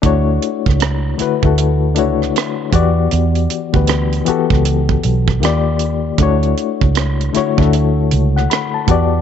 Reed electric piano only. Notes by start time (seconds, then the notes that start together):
0.02 A3 D4 E4 F#4
0.06 C#5
1.18 D3 A3 E4 F#4
1.22 B4
1.43 D3 A3 E4 F#4
1.47 A4
1.95 A3 D4 E4 F#4
1.99 C#5
2.71 E3 B3 F#4 G4
2.75 D5
3.72 E3 B3 F#4 G4 B4
4.25 E3 B3 F#4 G4
4.29 A4
5.40 D#3 A#3 F4 G4
5.45 D5
6.18 A3 D4 E4 F#4
6.23 C#5
7.33 D3 A3 E4 F#4
7.37 C#5
7.57 D3 A3 E4 F#4 A4
8.36 F#5
8.50 B5
8.74 A5
8.87 E3 B3 F#4 G4
8.91 D5